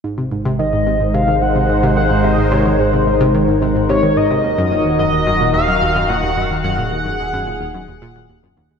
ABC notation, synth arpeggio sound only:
X:1
M:4/4
L:1/16
Q:1/4=109
K:Abmix
V:1 name="Synth arpeggio sound" clef=bass
A,, C, A,, C, E, A,, C, A,, C, E, A,, C, A,, C, E, A,, | C, A,, C, E, A,, C, A,, C, E, A,, C, A,, C, E, A,, C, | E,, G,, B,, E,, G,, E,, G,, B,, E,, G,, E,, G,, B,, E,, G,, E,, | G,, B,, E,, G,, E,, G,, B,, E,, G,, E,, B,, B,, E,, G,, E,, E,, |]